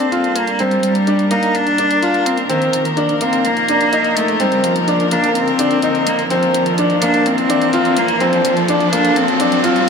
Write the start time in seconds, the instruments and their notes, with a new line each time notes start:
Already playing: string section G3 A#3 D4 A4, cello C4, riser
0.12 upright piano F4, closed hi-hat
0.24 closed hi-hat
0.36 cello A#3, closed hi-hat
0.47 closed hi-hat
0.59 cello G3, upright piano C4, string section A#4, closed hi-hat
0.71 closed hi-hat
0.83 cello G3, closed hi-hat
0.95 closed hi-hat
1.07 upright piano D4, closed hi-hat
1.19 closed hi-hat
1.31 upright piano A#3, cello D#4, closed hi-hat
1.43 closed hi-hat
1.55 cello D4, closed hi-hat
1.67 closed hi-hat
1.78 upright piano D4, closed hi-hat
1.91 closed hi-hat
2.02 upright piano F4, closed hi-hat
2.14 closed hi-hat
2.26 cello C4, closed hi-hat
2.37 closed hi-hat
2.49 cello D#3, string section F3 D#4, upright piano C4, closed hi-hat
2.62 closed hi-hat
2.73 cello D#3, closed hi-hat
2.85 closed hi-hat
2.97 upright piano D4, closed hi-hat
3.09 closed hi-hat
3.21 upright piano A#3, cello C4, closed hi-hat
3.33 closed hi-hat
3.45 cello A#3, closed hi-hat
3.57 closed hi-hat
3.68 upright piano D4, closed hi-hat
3.81 closed hi-hat
3.93 upright piano D#4, closed hi-hat
4.04 closed hi-hat
4.17 cello A3, closed hi-hat
4.28 closed hi-hat
4.40 cello G3, upright piano C4, closed hi-hat
4.52 closed hi-hat
4.64 cello F3, closed hi-hat
4.76 closed hi-hat
4.88 upright piano D4, closed hi-hat
5.00 closed hi-hat
5.11 upright piano A#3, cello D4, closed hi-hat
5.24 closed hi-hat
5.35 cello C4, closed hi-hat
5.48 closed hi-hat
5.59 upright piano D4, closed hi-hat
5.71 closed hi-hat
5.82 upright piano D#4, closed hi-hat
5.95 closed hi-hat
6.07 cello A#3, closed hi-hat
6.19 closed hi-hat
6.30 cello F3, upright piano C4, string section D4, closed hi-hat
6.43 closed hi-hat
6.54 cello F3, closed hi-hat
6.66 closed hi-hat
6.78 upright piano D4, closed hi-hat
6.90 closed hi-hat
7.02 upright piano A#3, cello D4, closed hi-hat
7.14 closed hi-hat
7.26 cello C4, closed hi-hat
7.38 closed hi-hat
7.49 upright piano D4, closed hi-hat
7.62 closed hi-hat
7.73 upright piano F4, closed hi-hat
7.85 closed hi-hat
7.97 cello A#3, closed hi-hat
8.08 closed hi-hat
8.20 cello F3, upright piano C4, string section A4, closed hi-hat
8.33 closed hi-hat
8.45 cello F3, closed hi-hat
8.57 closed hi-hat
8.68 upright piano D4, closed hi-hat
8.80 closed hi-hat
8.92 upright piano A#3, cello D4, closed hi-hat
9.05 closed hi-hat
9.16 cello C4, closed hi-hat
9.28 closed hi-hat
9.40 upright piano D4, closed hi-hat
9.52 closed hi-hat
9.64 upright piano F4, closed hi-hat
9.76 closed hi-hat